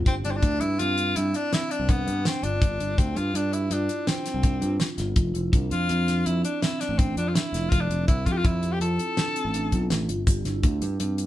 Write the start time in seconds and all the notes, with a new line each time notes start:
0.06 G1 C4, kick, closed hi-hat
0.24 G1 D4 E4, closed hi-hat
0.31 C4
0.37 D4
0.42 D2 D4, kick, closed hi-hat
0.60 G2 D4 E4, closed hi-hat
0.78 G2 C4 F4, closed hi-hat
0.96 D4, closed hi-hat
1.15 G2 E4, closed hi-hat
1.33 D4, closed hi-hat
1.51 C4 E4, snare, closed hi-hat
1.70 D4, closed hi-hat
1.80 C2
1.88 B3 D4, kick, closed hi-hat
2.07 G2, closed hi-hat
2.25 C4 D4, snare, closed hi-hat
2.43 G1 D4 F4, closed hi-hat
2.62 G1, kick, closed hi-hat
2.79 G1 D4, closed hi-hat
2.98 D2 C4, kick, closed hi-hat
3.15 G2 F4, closed hi-hat
3.34 G2 D4, closed hi-hat
3.53 E4 G4, closed hi-hat
3.71 G2 D4 F4, closed hi-hat
3.89 E4, closed hi-hat
4.07 C4 D4, snare, closed hi-hat
4.25 C4, snare, closed hi-hat
4.34 C2
4.43 D4, kick, closed hi-hat
4.61 G2 F4, closed hi-hat
4.80 snare, closed hi-hat
4.98 G1 F4, snare, closed hi-hat
5.16 F1 F4, kick, closed hi-hat
5.34 F1 E4, closed hi-hat
5.52 C2 D4, kick, closed hi-hat
5.70 F2 D4 F4, closed hi-hat
5.88 F2 C4, closed hi-hat
6.07 D4, snare, closed hi-hat
6.25 F2 E4, closed hi-hat
6.43 D4, closed hi-hat
6.62 C4 E4, snare, closed hi-hat
6.80 D4, snare, closed hi-hat
6.89 A1
6.98 C4 D4, kick, closed hi-hat
7.17 F2 D4, closed hi-hat
7.28 F4
7.35 D4 E4, snare, closed hi-hat
7.53 F1 E4, snare, closed hi-hat
7.70 F1 F4, kick, closed hi-hat
7.80 D4
7.90 F1 C4, closed hi-hat
8.08 C2 E4, kick, closed hi-hat
8.26 F2 E4 F4, kick, closed hi-hat
8.32 G4
8.37 F4
8.44 F2 C4 E4, kick, closed hi-hat
8.62 G4, closed hi-hat
8.73 G4
8.80 F2 F4 A4, closed hi-hat
8.99 E4, closed hi-hat
9.17 D4, snare, closed hi-hat
9.36 C4, closed hi-hat
9.45 A1
9.54 D4, closed hi-hat
9.72 B1 F4, kick, closed hi-hat
9.90 A1, snare, closed hi-hat
10.08 G1 F4, closed hi-hat
10.27 G1 G4, kick, closed hi-hat, shaker
10.45 G1 E4, snare, closed hi-hat
10.63 D2 D4, kick, closed hi-hat
10.82 G2 D4, closed hi-hat, shaker
11.00 G2 C4, closed hi-hat
11.18 D4, closed hi-hat, shaker